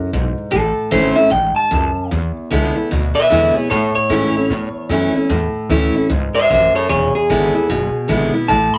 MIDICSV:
0, 0, Header, 1, 5, 480
1, 0, Start_track
1, 0, Key_signature, 3, "major"
1, 0, Tempo, 398671
1, 618, Time_signature, 4, 2, 24, 8
1, 10574, End_track
2, 0, Start_track
2, 0, Title_t, "Clean electric guitar"
2, 0, Program_c, 0, 27
2, 621, Note_on_c, 0, 69, 87
2, 1085, Note_off_c, 0, 69, 0
2, 1108, Note_on_c, 0, 72, 100
2, 1392, Note_on_c, 0, 76, 80
2, 1395, Note_off_c, 0, 72, 0
2, 1570, Note_off_c, 0, 76, 0
2, 1582, Note_on_c, 0, 79, 84
2, 1872, Note_off_c, 0, 79, 0
2, 1881, Note_on_c, 0, 81, 83
2, 2520, Note_off_c, 0, 81, 0
2, 3791, Note_on_c, 0, 71, 81
2, 3796, Note_on_c, 0, 76, 93
2, 3955, Note_off_c, 0, 71, 0
2, 3964, Note_off_c, 0, 76, 0
2, 3970, Note_on_c, 0, 71, 69
2, 3978, Note_on_c, 0, 76, 81
2, 4270, Note_off_c, 0, 71, 0
2, 4270, Note_on_c, 0, 68, 76
2, 4282, Note_off_c, 0, 76, 0
2, 4282, Note_on_c, 0, 73, 83
2, 4445, Note_off_c, 0, 73, 0
2, 4449, Note_off_c, 0, 68, 0
2, 4454, Note_on_c, 0, 69, 82
2, 4463, Note_on_c, 0, 73, 80
2, 4737, Note_off_c, 0, 69, 0
2, 4744, Note_off_c, 0, 73, 0
2, 4759, Note_on_c, 0, 73, 88
2, 6157, Note_off_c, 0, 73, 0
2, 7641, Note_on_c, 0, 72, 94
2, 7650, Note_on_c, 0, 76, 103
2, 7809, Note_off_c, 0, 72, 0
2, 7813, Note_off_c, 0, 76, 0
2, 7821, Note_on_c, 0, 72, 86
2, 7833, Note_on_c, 0, 76, 86
2, 8102, Note_off_c, 0, 72, 0
2, 8116, Note_off_c, 0, 76, 0
2, 8130, Note_on_c, 0, 69, 80
2, 8136, Note_on_c, 0, 73, 101
2, 8292, Note_off_c, 0, 69, 0
2, 8292, Note_off_c, 0, 73, 0
2, 8300, Note_on_c, 0, 68, 77
2, 8306, Note_on_c, 0, 73, 88
2, 8580, Note_off_c, 0, 68, 0
2, 8595, Note_off_c, 0, 73, 0
2, 8610, Note_on_c, 0, 68, 92
2, 10002, Note_off_c, 0, 68, 0
2, 10215, Note_on_c, 0, 81, 101
2, 10520, Note_off_c, 0, 81, 0
2, 10520, Note_on_c, 0, 83, 80
2, 10574, Note_off_c, 0, 83, 0
2, 10574, End_track
3, 0, Start_track
3, 0, Title_t, "Steel-string acoustic guitar"
3, 0, Program_c, 1, 25
3, 0, Note_on_c, 1, 42, 79
3, 121, Note_off_c, 1, 42, 0
3, 160, Note_on_c, 1, 44, 78
3, 611, Note_off_c, 1, 44, 0
3, 614, Note_on_c, 1, 45, 81
3, 1097, Note_on_c, 1, 52, 85
3, 1097, Note_on_c, 1, 57, 88
3, 1106, Note_on_c, 1, 61, 94
3, 1113, Note_on_c, 1, 64, 89
3, 1377, Note_off_c, 1, 64, 0
3, 1387, Note_off_c, 1, 52, 0
3, 1387, Note_off_c, 1, 57, 0
3, 1391, Note_off_c, 1, 61, 0
3, 1392, Note_on_c, 1, 64, 66
3, 1419, Note_on_c, 1, 61, 50
3, 1540, Note_off_c, 1, 45, 0
3, 1567, Note_off_c, 1, 64, 0
3, 1567, Note_on_c, 1, 44, 91
3, 1581, Note_off_c, 1, 61, 0
3, 2035, Note_off_c, 1, 44, 0
3, 2058, Note_on_c, 1, 42, 83
3, 2521, Note_off_c, 1, 42, 0
3, 2543, Note_on_c, 1, 40, 89
3, 3017, Note_on_c, 1, 50, 83
3, 3026, Note_on_c, 1, 56, 85
3, 3036, Note_on_c, 1, 59, 86
3, 3036, Note_on_c, 1, 64, 86
3, 3300, Note_off_c, 1, 64, 0
3, 3307, Note_off_c, 1, 50, 0
3, 3312, Note_off_c, 1, 56, 0
3, 3314, Note_on_c, 1, 64, 54
3, 3317, Note_off_c, 1, 59, 0
3, 3341, Note_on_c, 1, 59, 52
3, 3466, Note_off_c, 1, 40, 0
3, 3489, Note_off_c, 1, 64, 0
3, 3503, Note_off_c, 1, 59, 0
3, 3505, Note_on_c, 1, 47, 85
3, 3975, Note_on_c, 1, 50, 77
3, 3984, Note_on_c, 1, 56, 84
3, 3993, Note_on_c, 1, 59, 99
3, 3996, Note_on_c, 1, 64, 99
3, 4266, Note_off_c, 1, 50, 0
3, 4271, Note_off_c, 1, 56, 0
3, 4275, Note_off_c, 1, 59, 0
3, 4277, Note_off_c, 1, 64, 0
3, 4290, Note_on_c, 1, 64, 59
3, 4310, Note_on_c, 1, 59, 49
3, 4427, Note_off_c, 1, 47, 0
3, 4457, Note_off_c, 1, 64, 0
3, 4468, Note_off_c, 1, 59, 0
3, 4473, Note_on_c, 1, 45, 94
3, 4932, Note_on_c, 1, 52, 87
3, 4936, Note_on_c, 1, 57, 93
3, 4950, Note_on_c, 1, 61, 83
3, 4954, Note_on_c, 1, 64, 83
3, 5225, Note_off_c, 1, 52, 0
3, 5227, Note_off_c, 1, 57, 0
3, 5234, Note_off_c, 1, 61, 0
3, 5236, Note_off_c, 1, 64, 0
3, 5256, Note_on_c, 1, 64, 59
3, 5280, Note_on_c, 1, 61, 50
3, 5391, Note_off_c, 1, 45, 0
3, 5421, Note_off_c, 1, 64, 0
3, 5433, Note_off_c, 1, 61, 0
3, 5437, Note_on_c, 1, 40, 84
3, 5892, Note_on_c, 1, 52, 81
3, 5902, Note_on_c, 1, 57, 87
3, 5912, Note_on_c, 1, 61, 99
3, 5915, Note_on_c, 1, 64, 92
3, 6177, Note_off_c, 1, 64, 0
3, 6185, Note_off_c, 1, 52, 0
3, 6190, Note_off_c, 1, 57, 0
3, 6192, Note_on_c, 1, 64, 67
3, 6195, Note_off_c, 1, 61, 0
3, 6215, Note_on_c, 1, 61, 51
3, 6353, Note_off_c, 1, 40, 0
3, 6369, Note_off_c, 1, 64, 0
3, 6374, Note_on_c, 1, 45, 88
3, 6380, Note_off_c, 1, 61, 0
3, 6863, Note_on_c, 1, 52, 76
3, 6865, Note_on_c, 1, 57, 93
3, 6875, Note_on_c, 1, 61, 86
3, 6875, Note_on_c, 1, 64, 93
3, 7151, Note_off_c, 1, 52, 0
3, 7152, Note_off_c, 1, 57, 0
3, 7157, Note_off_c, 1, 61, 0
3, 7157, Note_off_c, 1, 64, 0
3, 7174, Note_on_c, 1, 64, 66
3, 7196, Note_on_c, 1, 61, 50
3, 7302, Note_off_c, 1, 45, 0
3, 7340, Note_off_c, 1, 64, 0
3, 7341, Note_on_c, 1, 44, 85
3, 7351, Note_off_c, 1, 61, 0
3, 7803, Note_off_c, 1, 44, 0
3, 7828, Note_on_c, 1, 42, 92
3, 8287, Note_off_c, 1, 42, 0
3, 8299, Note_on_c, 1, 40, 91
3, 8784, Note_on_c, 1, 50, 82
3, 8787, Note_on_c, 1, 56, 88
3, 8798, Note_on_c, 1, 59, 94
3, 8801, Note_on_c, 1, 64, 92
3, 9066, Note_off_c, 1, 64, 0
3, 9071, Note_off_c, 1, 50, 0
3, 9073, Note_off_c, 1, 56, 0
3, 9078, Note_off_c, 1, 59, 0
3, 9081, Note_on_c, 1, 64, 63
3, 9105, Note_on_c, 1, 59, 51
3, 9223, Note_off_c, 1, 40, 0
3, 9253, Note_off_c, 1, 64, 0
3, 9265, Note_off_c, 1, 59, 0
3, 9267, Note_on_c, 1, 47, 89
3, 9727, Note_on_c, 1, 50, 74
3, 9740, Note_on_c, 1, 56, 95
3, 9748, Note_on_c, 1, 59, 88
3, 9755, Note_on_c, 1, 64, 104
3, 10022, Note_off_c, 1, 50, 0
3, 10022, Note_off_c, 1, 64, 0
3, 10029, Note_off_c, 1, 56, 0
3, 10032, Note_off_c, 1, 59, 0
3, 10036, Note_on_c, 1, 64, 59
3, 10061, Note_on_c, 1, 59, 53
3, 10187, Note_off_c, 1, 47, 0
3, 10210, Note_off_c, 1, 64, 0
3, 10219, Note_on_c, 1, 45, 93
3, 10223, Note_off_c, 1, 59, 0
3, 10574, Note_off_c, 1, 45, 0
3, 10574, End_track
4, 0, Start_track
4, 0, Title_t, "Upright bass"
4, 0, Program_c, 2, 32
4, 155, Note_on_c, 2, 35, 88
4, 439, Note_off_c, 2, 35, 0
4, 638, Note_on_c, 2, 33, 94
4, 920, Note_off_c, 2, 33, 0
4, 1103, Note_on_c, 2, 32, 96
4, 1393, Note_off_c, 2, 32, 0
4, 1581, Note_on_c, 2, 33, 87
4, 1872, Note_off_c, 2, 33, 0
4, 2065, Note_on_c, 2, 37, 96
4, 2354, Note_off_c, 2, 37, 0
4, 2552, Note_on_c, 2, 40, 88
4, 2838, Note_off_c, 2, 40, 0
4, 3033, Note_on_c, 2, 37, 94
4, 3318, Note_off_c, 2, 37, 0
4, 3514, Note_on_c, 2, 38, 91
4, 3799, Note_off_c, 2, 38, 0
4, 3991, Note_on_c, 2, 40, 81
4, 4278, Note_off_c, 2, 40, 0
4, 4465, Note_on_c, 2, 45, 88
4, 4755, Note_off_c, 2, 45, 0
4, 4934, Note_on_c, 2, 44, 99
4, 5229, Note_off_c, 2, 44, 0
4, 5418, Note_on_c, 2, 45, 92
4, 5701, Note_off_c, 2, 45, 0
4, 5894, Note_on_c, 2, 42, 91
4, 6189, Note_off_c, 2, 42, 0
4, 6379, Note_on_c, 2, 40, 92
4, 6665, Note_off_c, 2, 40, 0
4, 6854, Note_on_c, 2, 38, 95
4, 7149, Note_off_c, 2, 38, 0
4, 7340, Note_on_c, 2, 37, 83
4, 7632, Note_off_c, 2, 37, 0
4, 7829, Note_on_c, 2, 33, 95
4, 8117, Note_off_c, 2, 33, 0
4, 8307, Note_on_c, 2, 28, 93
4, 8595, Note_off_c, 2, 28, 0
4, 8787, Note_on_c, 2, 32, 96
4, 9076, Note_off_c, 2, 32, 0
4, 9261, Note_on_c, 2, 30, 91
4, 9552, Note_off_c, 2, 30, 0
4, 9739, Note_on_c, 2, 32, 92
4, 10031, Note_off_c, 2, 32, 0
4, 10218, Note_on_c, 2, 33, 93
4, 10510, Note_off_c, 2, 33, 0
4, 10574, End_track
5, 0, Start_track
5, 0, Title_t, "Muted upright bass strokes"
5, 455, Note_on_c, 9, 29, 76
5, 576, Note_off_c, 9, 29, 0
5, 936, Note_on_c, 9, 29, 69
5, 1056, Note_off_c, 9, 29, 0
5, 1409, Note_on_c, 9, 29, 73
5, 1529, Note_off_c, 9, 29, 0
5, 1889, Note_on_c, 9, 29, 66
5, 2009, Note_off_c, 9, 29, 0
5, 2369, Note_on_c, 9, 29, 68
5, 2490, Note_off_c, 9, 29, 0
5, 2853, Note_on_c, 9, 29, 72
5, 2973, Note_off_c, 9, 29, 0
5, 3340, Note_on_c, 9, 29, 73
5, 3461, Note_off_c, 9, 29, 0
5, 3820, Note_on_c, 9, 29, 68
5, 3941, Note_off_c, 9, 29, 0
5, 4287, Note_on_c, 9, 29, 72
5, 4408, Note_off_c, 9, 29, 0
5, 4764, Note_on_c, 9, 29, 75
5, 4884, Note_off_c, 9, 29, 0
5, 5249, Note_on_c, 9, 29, 67
5, 5369, Note_off_c, 9, 29, 0
5, 5708, Note_on_c, 9, 29, 64
5, 5828, Note_off_c, 9, 29, 0
5, 6197, Note_on_c, 9, 29, 76
5, 6318, Note_off_c, 9, 29, 0
5, 6672, Note_on_c, 9, 29, 70
5, 6792, Note_off_c, 9, 29, 0
5, 7163, Note_on_c, 9, 29, 72
5, 7283, Note_off_c, 9, 29, 0
5, 7641, Note_on_c, 9, 29, 65
5, 7761, Note_off_c, 9, 29, 0
5, 8124, Note_on_c, 9, 29, 74
5, 8244, Note_off_c, 9, 29, 0
5, 8610, Note_on_c, 9, 29, 70
5, 8730, Note_off_c, 9, 29, 0
5, 9085, Note_on_c, 9, 29, 74
5, 9206, Note_off_c, 9, 29, 0
5, 9561, Note_on_c, 9, 29, 65
5, 9681, Note_off_c, 9, 29, 0
5, 10044, Note_on_c, 9, 29, 72
5, 10164, Note_off_c, 9, 29, 0
5, 10518, Note_on_c, 9, 29, 71
5, 10574, Note_off_c, 9, 29, 0
5, 10574, End_track
0, 0, End_of_file